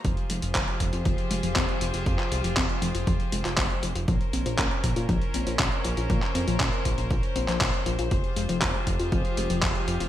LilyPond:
<<
  \new Staff \with { instrumentName = "String section" } { \time 4/4 \key f \minor \tempo 4 = 119 << { c''1~ | c''1 | c''1~ | c''1~ |
c''1 | } \\ { <f f' g' aes'>1~ | <f f' g' aes'>1 | <des' bes'>1~ | <des' bes'>1 |
<f f' g' aes'>1 | } >> }
  \new Staff \with { instrumentName = "Synth arpeggio sound" } { \clef bass \time 4/4 \key f \minor f16 r16 aes16 f16 c'16 r16 f16 f'16 f16 r16 aes16 f16 c'16 r16 f16 f'16 | f16 r16 aes16 f16 c'16 r16 f16 f'16 f16 r16 aes16 f16 c'16 r16 f16 f'16 | f16 r16 c'16 f16 des'16 r16 f16 f'16 f16 r16 c'16 f16 des'16 r16 f16 f'16 | f16 r16 c'16 f16 des'16 r16 f16 f'16 f16 r16 c'16 f16 des'16 r16 f16 f'16 |
f16 r16 aes16 f16 c'16 r16 f16 f'16 f16 r16 aes16 f16 c'16 r16 f16 f'16 | }
  \new Staff \with { instrumentName = "Analog synth bass" } { \clef bass \time 4/4 \key f \minor f,,16 r16 f,,16 f,,16 f,,16 r16 f,,16 f,16 f,,16 r16 f,,16 f,,16 f,,16 r16 f,,16 f,,16 | f,16 r16 c,16 f,,16 f,,16 r16 f,,16 f,,16 f,,16 r16 f,,16 f,,16 f,,16 r16 f,,16 f,,16 | bes,,16 r16 bes,,16 bes,,16 bes,,16 r16 bes,,16 bes,16 bes,,16 r16 bes,,16 bes,,16 bes,,16 r16 bes,,16 bes,,16 | bes,16 r16 f,16 bes,,16 bes,,16 r16 bes,,16 bes,,16 bes,,16 r16 bes,,16 bes,,16 bes,,16 r16 bes,,16 bes,,16 |
f,,16 r16 f,,16 f,,16 f,,16 r16 f,,16 f,16 f,,16 r16 f,,16 f,,16 f,,16 r16 f,,16 f,,16 | }
  \new DrumStaff \with { instrumentName = "Drums" } \drummode { \time 4/4 <hh bd>16 hh16 hh16 hh16 <hc hh bd>16 hh16 <hh bd>16 hh16 <hh bd>16 hh16 hh16 hh16 <hc hh bd>16 hh16 hh16 hh16 | <hh bd>16 <hc hh>16 hh16 hh16 <hc hh bd>16 hh16 hh16 hh16 <hh bd>16 hh16 hh16 <hc hh>16 <hc hh bd>16 hh16 hh16 hh16 | <hh bd>16 hh16 hh16 hh16 <hc hh bd>16 hh16 <hh bd>16 hh16 <hh bd>16 hh16 hh16 hh16 <hc hh bd>16 hh16 hh16 hh16 | <hh bd>16 <hc hh>16 hh16 hh16 <hc hh bd>16 hh16 <hh bd>16 hh16 <hh bd>16 hh16 hh16 <hc hh>16 <hc hh bd>16 hh16 hh16 hh16 |
<hh bd>16 hh16 hh16 hh16 <hc hh bd>16 hh16 <hh bd>16 hh16 <hh bd>16 hh16 hh16 hh16 <hc hh bd>16 hh16 hh16 hh16 | }
>>